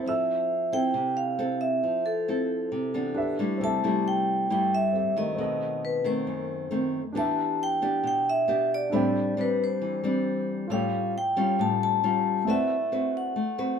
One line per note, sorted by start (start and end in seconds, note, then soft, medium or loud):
0.00 0.47 C4 medium
0.00 3.11 C4 soft
0.00 0.47 E4 medium
0.00 0.47 A4 medium
0.06 0.93 F3 medium
0.06 3.13 A4 soft
0.06 0.76 E5 medium
0.06 3.14 E6 medium
0.72 1.36 C4 medium
0.72 1.36 E4 medium
0.72 1.36 A4 medium
0.72 1.19 G5 loud
0.94 1.81 C3 medium
1.17 1.63 F5 medium
1.39 1.99 C4 medium
1.39 1.99 E4 medium
1.39 1.99 A4 medium
1.61 2.07 E5 medium
1.84 2.70 F3 medium
2.06 3.35 A4 medium
2.28 2.91 C4 medium
2.28 2.91 E4 medium
2.28 2.92 A4 medium
2.72 3.14 C3 medium
2.94 3.35 E3 medium
2.94 3.35 B3 medium
2.94 3.36 D4 medium
3.14 3.60 D4 medium
3.14 3.58 G4 soft
3.14 3.61 B4 medium
3.14 3.61 E5 medium
3.39 3.83 G3 medium
3.39 3.83 A3 medium
3.39 3.84 E4 medium
3.58 4.47 C3 medium
3.58 4.90 C4 medium
3.58 4.91 G4 soft
3.62 4.92 A4 soft
3.62 4.93 E5 medium
3.62 4.08 A5 loud
3.84 4.46 G3 medium
3.84 4.47 A3 medium
3.84 4.47 E4 medium
4.08 4.51 G5 loud
4.50 5.37 G2 medium
4.50 5.13 G3 medium
4.50 5.13 A3 medium
4.50 5.13 E4 medium
4.50 4.74 G5 medium
4.75 5.15 E5 medium
4.93 5.33 C4 soft
4.93 5.38 G4 soft
4.93 5.36 A4 soft
4.93 5.39 E5 soft
5.16 6.01 D#3 medium
5.16 6.02 A3 medium
5.16 5.85 D#5 medium
5.35 6.25 B2 medium
5.35 7.10 C4 medium
5.35 7.12 A4 soft
5.39 7.13 B3 soft
5.39 7.14 D#5 medium
5.85 6.07 B4 medium
6.04 6.68 D#3 medium
6.04 6.68 A3 medium
6.04 6.68 C4 medium
6.04 6.90 C5 medium
6.27 7.14 F#2 medium
6.71 7.01 D#3 medium
6.71 7.01 A3 medium
6.71 7.01 C4 medium
7.12 8.02 E3 medium
7.12 7.78 B3 medium
7.12 8.88 D4 medium
7.12 7.79 D4 medium
7.12 8.89 G4 soft
7.12 7.79 G4 medium
7.12 8.90 B4 soft
7.17 8.91 E5 medium
7.17 7.62 A5 medium
7.63 8.06 G5 loud
7.82 8.45 B3 medium
7.82 8.45 D4 medium
7.82 8.45 G4 medium
8.03 8.90 B2 medium
8.03 8.29 G5 loud
8.29 8.69 E5 loud
8.48 8.91 B3 medium
8.48 8.91 D4 medium
8.48 8.91 G4 medium
8.74 9.41 D5 medium
8.90 9.79 A2 medium
8.90 9.34 G3 medium
8.90 9.34 C4 medium
8.90 10.65 D4 soft
8.90 9.34 D4 medium
8.90 10.66 A4 medium
8.90 10.67 B5 soft
8.94 10.67 C5 soft
8.94 10.68 G5 medium
9.37 10.00 G3 medium
9.37 10.00 C4 medium
9.37 10.01 D4 medium
9.37 9.62 B4 medium
9.64 10.46 C5 medium
9.81 10.68 E3 medium
10.04 10.67 G3 medium
10.04 10.67 C4 medium
10.04 10.67 D4 medium
10.68 11.57 A2 medium
10.68 11.14 G3 medium
10.68 11.15 C#4 medium
10.68 12.43 F4 medium
10.68 11.15 F4 medium
10.68 12.44 A4 soft
10.68 12.45 C#5 soft
10.72 11.12 F5 medium
10.72 12.46 G5 medium
11.18 11.62 G5 loud
11.36 12.00 G3 medium
11.36 12.00 C#4 medium
11.36 12.00 F4 medium
11.59 12.46 A2 medium
11.59 11.82 A5 loud
11.83 12.51 A5 loud
12.03 12.46 G3 medium
12.03 12.46 C#4 medium
12.03 12.46 F4 medium
12.45 13.79 A3 medium
12.45 13.34 A3 medium
12.45 12.76 C4 medium
12.45 13.79 E4 soft
12.45 12.76 F#4 medium
12.45 13.79 B4 soft
12.45 12.77 B4 medium
12.50 13.79 D5 soft
12.50 13.11 E5 medium
12.50 13.79 F#5 medium
12.92 13.36 C4 medium
12.92 13.36 F#4 medium
12.92 13.37 B4 medium
13.17 13.79 F#5 medium
13.36 13.79 A3 medium
13.58 13.79 C4 medium
13.58 13.79 F#4 medium
13.58 13.79 B4 medium